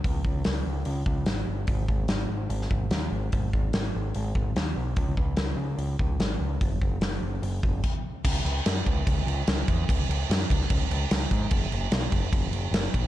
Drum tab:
CC |----------------|----------------|----------------|----------------|
HH |o---o---o---o---|o---o---o---o---|o---o---o---o---|o---o---o---o---|
SD |----o-------o---|----o----o--o---|----o-------o---|----o-------o---|
BD |o-o-------o-----|o-o-------o-----|o-o-------o-----|o-o-------o-----|

CC |------------x---|x-x-x-x-x-x-x-x-|x-x-x-x-x-x-x-x-|x-x-x-x-x-x-x-x-|
HH |o---o---o-------|----------------|----------------|----------------|
SD |----o-----------|----o-------o---|----o--o----o---|----o-------o---|
BD |o-o-------o-o---|o-----o-o-----o-|o-----o-o-----o-|o-----o-o-----o-|